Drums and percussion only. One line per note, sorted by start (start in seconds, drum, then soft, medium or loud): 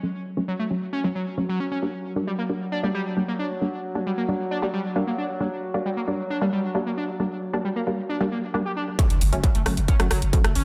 8.99 kick loud
8.99 closed hi-hat medium
9.10 closed hi-hat medium
9.21 open hi-hat loud
9.33 closed hi-hat medium
9.44 kick loud
9.44 closed hi-hat medium
9.55 closed hi-hat medium
9.66 cross-stick medium
9.66 open hi-hat medium
9.77 closed hi-hat medium
9.88 kick loud
9.88 closed hi-hat medium
10.00 cross-stick medium
10.00 closed hi-hat medium
10.11 cross-stick medium
10.11 open hi-hat loud
10.22 closed hi-hat medium
10.33 kick loud
10.33 closed hi-hat medium
10.44 cross-stick medium
10.44 closed hi-hat soft
10.55 open hi-hat medium